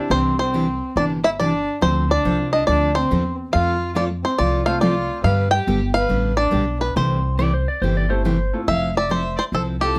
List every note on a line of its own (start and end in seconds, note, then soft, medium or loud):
0.00 0.50 C4 medium
0.00 0.50 D4 medium
0.00 0.50 E4 medium
0.00 0.50 G4 medium
0.00 0.50 C5 medium
0.10 0.79 C2 medium
0.10 0.32 C3 medium
0.10 0.33 E3 medium
0.10 0.37 C4 medium
0.10 0.33 D4 medium
0.10 0.33 G4 medium
0.10 0.37 C5 loud
0.39 0.93 C4 medium
0.39 0.98 C5 medium
0.54 0.65 C3 medium
0.54 0.65 E3 medium
0.54 0.66 D4 medium
0.54 0.66 G4 medium
0.96 1.65 G1 medium
0.96 1.19 C3 medium
0.96 1.19 E3 medium
0.96 1.19 D4 medium
0.96 1.11 D4 medium
0.96 1.19 G4 medium
0.96 1.04 D5 medium
1.24 1.30 E4 medium
1.24 1.29 E5 loud
1.40 1.51 C3 medium
1.40 1.51 E3 medium
1.40 1.51 D4 medium
1.40 1.80 D4 medium
1.40 1.52 G4 medium
1.40 1.83 D5 medium
1.81 2.16 D2 medium
1.81 2.04 D3 medium
1.81 2.04 F3 medium
1.81 2.08 C4 medium
1.81 2.04 C4 medium
1.81 2.04 D4 medium
1.81 2.04 A4 medium
1.81 2.08 C5 loud
2.10 2.50 D4 medium
2.10 2.52 D5 medium
2.24 2.61 C2 medium
2.24 2.36 D3 medium
2.24 2.37 F3 medium
2.24 2.90 C4 medium
2.24 2.36 C4 medium
2.24 2.90 D4 medium
2.24 2.37 D4 medium
2.24 2.90 F4 medium
2.24 2.90 A4 medium
2.24 2.37 A4 medium
2.24 2.90 C5 medium
2.53 2.66 D4 medium
2.53 2.67 D#5 medium
2.67 3.04 D2 medium
2.67 2.90 D3 medium
2.67 2.90 F3 medium
2.67 2.90 C4 medium
2.67 2.93 D4 medium
2.67 2.90 D4 medium
2.67 2.90 A4 medium
2.67 2.96 D5 medium
2.95 3.35 C4 medium
2.95 3.35 C5 medium
3.11 3.47 E2 medium
3.11 3.22 D3 medium
3.11 3.23 F3 medium
3.11 3.23 C4 medium
3.11 3.23 D4 medium
3.11 3.23 A4 medium
3.53 4.23 F2 medium
3.53 3.75 F3 medium
3.53 3.75 A3 medium
3.53 3.75 C4 medium
3.53 3.93 F4 medium
3.53 3.75 F4 medium
3.53 3.76 A4 medium
3.53 3.93 F5 loud
3.95 4.07 F3 medium
3.95 4.08 A3 medium
3.95 4.08 C4 medium
3.95 4.07 F4 medium
3.95 4.08 F4 medium
3.95 4.08 A4 medium
3.95 4.04 D5 medium
4.23 4.37 C4 medium
4.23 4.40 C5 medium
4.38 5.08 C2 medium
4.38 4.61 F3 medium
4.38 4.61 A3 medium
4.38 4.61 C4 medium
4.38 4.65 F4 medium
4.38 4.61 F4 medium
4.38 4.61 A4 medium
4.38 4.66 D5 medium
4.65 5.21 A3 medium
4.65 5.22 C4 medium
4.65 4.80 F4 medium
4.65 5.22 F4 medium
4.65 5.22 A4 medium
4.65 5.22 C5 medium
4.65 4.81 F5 loud
4.81 4.94 F3 medium
4.81 4.94 A3 medium
4.81 4.94 C4 medium
4.81 5.21 F4 medium
4.81 4.94 F4 medium
4.81 4.94 A4 medium
4.81 5.21 D5 medium
5.24 5.58 G2 loud
5.24 5.46 D3 medium
5.24 5.47 G3 medium
5.24 5.47 B3 medium
5.24 5.47 D4 medium
5.24 5.47 G4 medium
5.24 5.50 B4 medium
5.24 5.51 F5 loud
5.51 5.93 G4 medium
5.51 5.91 G5 loud
5.67 6.04 G1 medium
5.67 5.79 D3 medium
5.67 5.79 G3 medium
5.67 5.79 B3 medium
5.67 5.79 D4 medium
5.67 5.80 G4 medium
5.94 6.34 B4 medium
5.94 6.37 F5 loud
6.09 6.47 A1 medium
6.09 6.32 D3 medium
6.09 6.32 G3 medium
6.09 6.32 B3 medium
6.09 6.32 D4 medium
6.09 6.32 G4 medium
6.37 6.78 D4 medium
6.37 6.82 D5 medium
6.51 6.90 B1 medium
6.51 6.64 D3 medium
6.51 6.64 G3 medium
6.51 6.64 B3 medium
6.51 6.64 D4 medium
6.51 6.64 G4 medium
6.80 6.94 B3 medium
6.80 6.95 B4 medium
6.96 7.65 C2 loud
6.96 7.18 C3 medium
6.96 7.18 E3 medium
6.96 7.18 A3 medium
6.96 7.36 C4 medium
6.96 7.19 E4 medium
6.96 7.19 G4 medium
6.96 7.36 C5 medium
7.39 7.50 C3 medium
7.39 7.50 E3 medium
7.39 7.50 A3 medium
7.39 7.51 E4 medium
7.39 7.51 G4 medium
7.39 7.53 D5 medium
7.54 7.67 C5 medium
7.68 7.82 D5 medium
7.82 8.50 G1 medium
7.82 8.05 C3 medium
7.82 8.05 E3 medium
7.82 8.04 A3 medium
7.82 8.05 E4 medium
7.82 8.05 G4 medium
7.82 7.96 C5 medium
7.97 8.10 D5 medium
8.09 8.23 A3 medium
8.09 8.23 C4 medium
8.09 8.23 E4 medium
8.09 8.23 G4 medium
8.09 8.23 A4 medium
8.09 8.24 C5 medium
8.25 8.37 C3 medium
8.25 8.36 E3 medium
8.25 8.37 A3 medium
8.25 8.37 E4 medium
8.25 8.37 G4 medium
8.25 8.59 C5 medium
8.53 8.66 A3 medium
8.53 8.66 C4 medium
8.53 8.66 E4 medium
8.53 8.66 F4 medium
8.53 8.66 A4 medium
8.68 9.36 F1 medium
8.68 8.90 F3 medium
8.68 8.90 C4 medium
8.68 8.90 E4 medium
8.68 8.90 A4 medium
8.68 8.96 E5 loud
8.68 8.94 F5 medium
8.97 9.12 D5 loud
8.97 9.10 E5 medium
9.09 9.21 F3 medium
9.09 9.22 C4 medium
9.09 9.22 E4 medium
9.09 9.22 A4 medium
9.09 9.37 C5 medium
9.09 9.36 E5 medium
9.37 9.44 C5 medium
9.37 9.44 D5 medium
9.52 9.99 C2 medium
9.52 9.75 F3 medium
9.52 9.75 C4 medium
9.52 9.76 E4 medium
9.52 9.76 A4 medium
9.52 9.62 A4 medium
9.52 9.66 C5 medium
9.80 9.94 C4 medium
9.80 9.94 E4 medium
9.80 9.95 F4 medium
9.80 9.99 G4 medium
9.80 9.99 A4 medium
9.80 9.95 A4 medium
9.95 9.99 F3 medium
9.95 9.99 C4 medium